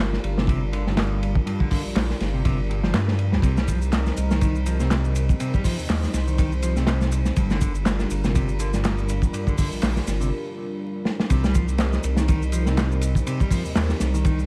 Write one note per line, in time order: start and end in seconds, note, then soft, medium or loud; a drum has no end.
0.00 0.18 G1 loud
0.00 7.33 G3 medium
0.00 3.40 D4 medium
0.00 3.40 F4 medium
0.00 3.40 A#4 medium
0.13 snare soft
0.24 1.41 G1 medium
0.24 ride medium
0.37 0.46 C3 medium
0.37 snare medium
0.47 0.61 C3 loud
0.47 kick loud
0.47 ride medium
0.73 0.83 D3 medium
0.73 ride medium
0.86 1.34 G2 medium
0.86 snare soft
0.97 snare loud
0.97 clap loud
0.97 ride medium
1.23 ride medium
1.35 kick loud
1.46 1.59 G2 loud
1.46 ride medium
1.60 1.69 D3 medium
1.60 kick medium
1.71 1.81 D3 medium
1.71 kick loud
1.71 open hi-hat medium
1.85 1.94 A#1 soft
1.96 2.14 A#1 medium
1.96 snare loud
1.96 clap loud
1.96 ride medium
2.10 snare soft
2.20 2.93 G1 medium
2.20 snare soft
2.20 ride medium
2.34 2.42 C3 medium
2.45 2.58 C3 loud
2.45 kick loud
2.45 ride medium
2.69 2.80 G2 medium
2.69 ride medium
2.83 2.94 F3 medium
2.83 snare soft
2.94 3.34 G2 loud
2.94 snare loud
2.94 clap loud
2.94 ride medium
3.08 3.13 G2 medium
3.08 snare medium
3.19 ride medium
3.32 3.40 C2 loud
3.32 3.42 G2 loud
3.32 snare soft
3.42 4.11 C2 loud
3.42 3.56 C3 loud
3.42 7.33 C4 medium
3.42 7.33 D#4 medium
3.42 5.38 A#4 medium
3.42 kick loud
3.42 ride medium
3.42 shaker soft
3.57 3.67 G3 medium
3.57 snare medium
3.57 shaker soft
3.68 3.79 F3 medium
3.68 kick loud
3.68 ride medium
3.68 shaker medium
3.82 shaker soft
3.92 snare loud
3.92 clap loud
3.92 ride medium
3.92 shaker soft
4.06 snare medium
4.06 shaker soft
4.17 5.35 C2 medium
4.17 ride medium
4.17 shaker medium
4.31 4.39 D#3 medium
4.31 snare medium
4.31 shaker soft
4.41 4.55 D#3 loud
4.41 kick loud
4.41 ride medium
4.41 shaker soft
4.55 shaker soft
4.66 4.77 F3 medium
4.66 ride medium
4.66 shaker medium
4.80 5.28 C3 medium
4.80 snare soft
4.80 shaker soft
4.91 snare loud
4.91 clap loud
4.91 ride loud
4.91 shaker soft
5.05 shaker soft
5.16 ride medium
5.16 shaker medium
5.29 kick medium
5.29 shaker soft
5.40 5.53 C3 loud
5.40 7.35 C5 medium
5.40 ride loud
5.40 shaker soft
5.53 5.63 G3 medium
5.53 kick medium
5.53 shaker soft
5.64 5.75 F3 medium
5.64 kick medium
5.64 open hi-hat medium
5.64 shaker medium
5.78 5.87 D#2 soft
5.78 shaker soft
5.89 6.07 D#2 loud
5.89 snare loud
5.89 clap loud
5.89 ride medium
5.89 shaker soft
6.03 snare medium
6.03 shaker soft
6.13 7.31 C2 medium
6.13 snare soft
6.13 ride medium
6.13 shaker medium
6.27 6.36 D#3 medium
6.27 shaker soft
6.38 6.51 D#3 loud
6.38 kick loud
6.38 ride medium
6.38 shaker soft
6.52 shaker soft
6.62 6.74 F3 medium
6.62 ride medium
6.62 shaker medium
6.77 7.25 C3 medium
6.77 snare soft
6.77 shaker soft
6.87 snare loud
6.87 clap loud
6.87 ride medium
6.87 shaker soft
7.01 snare medium
7.01 shaker soft
7.12 ride medium
7.12 shaker medium
7.25 snare soft
7.25 shaker soft
7.36 8.05 G1 loud
7.36 7.50 G2 loud
7.36 11.26 G3 medium
7.36 11.26 D4 medium
7.36 11.26 F4 medium
7.36 11.26 A#4 medium
7.36 kick loud
7.36 ride medium
7.36 shaker soft
7.50 7.60 D3 medium
7.50 snare medium
7.50 shaker soft
7.61 7.72 D3 medium
7.61 kick medium
7.61 ride medium
7.61 shaker medium
7.75 shaker soft
7.86 snare loud
7.86 clap loud
7.86 ride medium
7.86 shaker soft
7.99 snare soft
7.99 shaker soft
8.10 9.28 G1 medium
8.10 ride medium
8.10 shaker medium
8.24 8.33 C3 medium
8.24 snare medium
8.24 shaker soft
8.35 8.48 C3 loud
8.35 kick loud
8.35 ride medium
8.35 shaker soft
8.49 shaker soft
8.60 8.70 D3 medium
8.60 ride medium
8.60 shaker medium
8.73 9.21 G2 medium
8.73 snare soft
8.73 shaker soft
8.84 snare loud
8.84 clap loud
8.84 ride medium
8.84 shaker soft
8.98 shaker soft
9.09 ride medium
9.09 shaker medium
9.22 kick medium
9.22 shaker soft
9.33 9.46 G2 loud
9.33 ride medium
9.33 shaker soft
9.47 9.57 D3 medium
9.47 kick medium
9.47 shaker soft
9.58 9.69 D3 medium
9.58 kick loud
9.58 open hi-hat medium
9.58 shaker medium
9.72 9.80 A#1 soft
9.72 shaker soft
9.82 10.00 A#1 medium
9.82 snare loud
9.82 clap loud
9.82 ride medium
9.82 shaker soft
9.96 snare medium
9.96 shaker soft
10.07 10.32 G1 loud
10.07 snare soft
10.07 ride medium
10.07 shaker medium
10.21 10.29 C3 medium
10.21 shaker soft
11.05 snare medium
11.20 snare medium
11.30 11.99 C2 loud
11.30 11.43 C3 loud
11.30 14.46 G3 medium
11.30 14.46 C4 medium
11.30 14.46 D#4 medium
11.30 14.46 A#4 medium
11.30 kick loud
11.30 ride loud
11.30 shaker soft
11.44 11.54 G3 medium
11.44 snare medium
11.44 shaker soft
11.54 11.65 F3 medium
11.54 kick medium
11.54 ride medium
11.54 shaker medium
11.68 shaker soft
11.78 snare loud
11.78 clap loud
11.78 ride medium
11.78 shaker soft
11.93 snare soft
11.93 shaker soft
12.04 13.21 C2 loud
12.04 ride medium
12.04 shaker medium
12.16 12.26 D#3 medium
12.16 snare medium
12.16 shaker soft
12.28 12.41 D#3 loud
12.28 kick loud
12.28 ride medium
12.28 shaker soft
12.42 shaker soft
12.52 12.64 F3 medium
12.52 ride medium
12.52 shaker medium
12.66 13.14 C3 medium
12.66 snare soft
12.66 shaker soft
12.77 snare loud
12.77 clap loud
12.77 ride medium
12.77 shaker soft
12.92 shaker soft
13.01 ride medium
13.01 shaker medium
13.15 kick medium
13.15 shaker soft
13.27 13.40 C3 loud
13.27 ride loud
13.27 shaker soft
13.40 13.50 G3 medium
13.40 kick medium
13.40 shaker soft
13.51 13.62 F3 medium
13.51 kick medium
13.51 open hi-hat medium
13.51 shaker medium
13.65 13.74 D#2 soft
13.65 shaker soft
13.75 13.94 D#2 medium
13.75 snare loud
13.75 clap loud
13.75 ride loud
13.75 shaker soft
13.89 snare soft
13.89 shaker soft
14.00 14.46 C2 medium
14.00 snare soft
14.00 ride medium
14.00 shaker medium
14.14 14.23 D#3 medium
14.14 shaker soft
14.25 14.38 D#3 loud
14.25 kick loud
14.25 ride medium
14.25 shaker soft
14.39 shaker soft